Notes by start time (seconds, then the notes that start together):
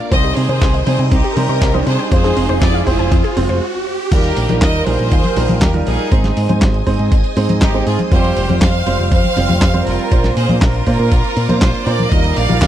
Already playing: riser
0.11 C2 G3 C4 D#4 C5 D#5 G5 D#6, kick, closed hi-hat
0.24 G4, closed hi-hat
0.37 C3 C4 G#4 C5, open hi-hat
0.49 C3 D#3 C4 D#4 C5, closed hi-hat
0.62 C2 C4, kick, snare, closed hi-hat
0.74 D#5, closed hi-hat
0.86 C3 G3 C4 D#4 G#4 C5, open hi-hat
0.99 C3 G5, closed hi-hat
1.12 C2 C4 D#4 G4, kick, closed hi-hat
1.24 G4, closed hi-hat
1.37 C3 G3 C4 D#4 G4 A#4 C5, open hi-hat
1.49 C3 C5, closed hi-hat
1.62 C2 C4, kick, snare, closed hi-hat
1.74 G3 C4 D#4 C5 D#5, closed hi-hat
1.87 C3 C4 G#4 C5, open hi-hat
1.99 G5, closed hi-hat
2.11 F2 G#3 C4 F4 G#4 C5 F5 C6, kick, closed hi-hat
2.24 G#4, snare, closed hi-hat
2.37 F1 C4, open hi-hat
2.49 F1 G#3 C4 F4 C5, closed hi-hat
2.62 F2 C4 G#4 D5, kick, snare, closed hi-hat
2.74 F5, closed hi-hat
2.87 F1 G#3 C4 F4 G#4 C5, kick, open hi-hat
2.99 F1 G#5, closed hi-hat
3.12 F2 C4, kick, closed hi-hat
3.24 G#4, closed hi-hat
3.37 F1 G#3 C4 F4 C5, open hi-hat
3.49 F1 C5, closed hi-hat
4.11 D#2 G3 D#4 F4 G4 A#4 F5 G5 D#6, kick, closed hi-hat, crash
4.24 closed hi-hat
4.37 A#1, open hi-hat
4.49 A#1 G3 D#4 F4 A#4, closed hi-hat, high conga
4.61 D#2 A#4 D#5, kick, snare, clap, closed hi-hat
4.74 closed hi-hat
4.87 A#1 G3 D#4 F4 G#4 A#4 C5, open hi-hat
4.99 A#1, closed hi-hat
5.12 D#2, kick, closed hi-hat
5.24 closed hi-hat, high conga
5.37 A#1 G3 D#4 F4 A#4, open hi-hat
5.49 A#1, closed hi-hat, high conga
5.61 D#2 G4 A#4, kick, snare, clap, closed hi-hat
5.74 G3 D#4 F4 A#4, closed hi-hat
5.87 A#1 D#4 G#4, open hi-hat, high conga
5.99 closed hi-hat
6.12 G#1 G#3 C4 D#4 C5 D#5 G#5, kick, closed hi-hat
6.24 snare, closed hi-hat
6.37 G#2, open hi-hat
6.49 G#2 G#3 C4 D#4 C5, closed hi-hat, high conga
6.62 G#1, kick, snare, clap, closed hi-hat
6.74 closed hi-hat
6.87 G#2 G#3 C4 D#4 C5, kick, open hi-hat
6.99 G#2, closed hi-hat
7.12 G#1, kick, closed hi-hat
7.24 closed hi-hat
7.37 G#2 G#3 C4 D#4 C5, open hi-hat
7.49 G#2, closed hi-hat, high conga
7.62 G#1 D#4 G4, kick, snare, clap, closed hi-hat
7.74 G#3 C4 D#4 C5, closed hi-hat
7.87 G#2 F4 G#4, open hi-hat
7.99 closed hi-hat, high conga
8.12 F2 G3 C4 F4 G4 C5 F5 G5 F6, kick, closed hi-hat
8.24 closed hi-hat
8.37 F1, open hi-hat
8.49 F1 G3 C4 F4 C5, closed hi-hat, high conga
8.62 F2 C5 F5, kick, snare, clap, closed hi-hat
8.74 closed hi-hat
8.87 F1 G3 C4 F4 C5, open hi-hat
8.99 F1, closed hi-hat
9.12 F2 C5 F5, kick, closed hi-hat
9.24 closed hi-hat, high conga
9.36 F1 G3 C4 F4 C5, open hi-hat
9.49 F1, closed hi-hat, high conga
9.62 F2, kick, snare, clap, closed hi-hat
9.74 G3 C4 F4 C5, closed hi-hat
9.87 F1 F4 A#4, open hi-hat, high conga
9.99 closed hi-hat
10.11 A#1 A#3 D4 F4 C5 A#5 D6, kick, closed hi-hat
10.24 snare, closed hi-hat
10.37 A#2 G#4 C5, open hi-hat
10.49 A#2 A#3 D4 F4 C5, closed hi-hat, high conga
10.62 A#1 F4 A#4, kick, snare, clap, closed hi-hat
10.74 closed hi-hat
10.87 A#2 A#3 D4 F4 C5, kick, open hi-hat
10.99 A#2, closed hi-hat
11.12 A#1, kick, closed hi-hat
11.24 closed hi-hat
11.37 A#2, open hi-hat
11.49 A#2 A#3 D4 F4 C5, closed hi-hat, high conga
11.62 A#1 F4 C5, kick, snare, clap, closed hi-hat
11.74 closed hi-hat
11.87 A#2 A#3 D4 F4 A#4 C5 D5, open hi-hat
11.99 closed hi-hat, high conga
12.12 D#2 G3 D#4 F4 A#4 D#5 G5 A#5, kick, closed hi-hat
12.24 closed hi-hat
12.37 A#1 D5 F5, open hi-hat
12.49 A#1 G3 D#4 F4 A#4, closed hi-hat, high conga
12.62 D#2, kick, snare, clap, closed hi-hat